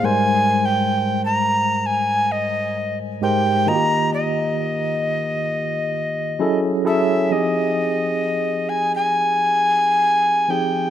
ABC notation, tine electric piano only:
X:1
M:4/4
L:1/8
Q:"Swing 16ths" 1/4=66
K:Fm
V:1 name="Tine electric piano"
[A,,G,A,Bc]4 z3 [A,,A,GBc] | [E,B,F_G=Ge]4 z2 [_G,D_FA=A] [G,DF_A=A] | [F,CEGA]4 z3 [F,CEGA] |]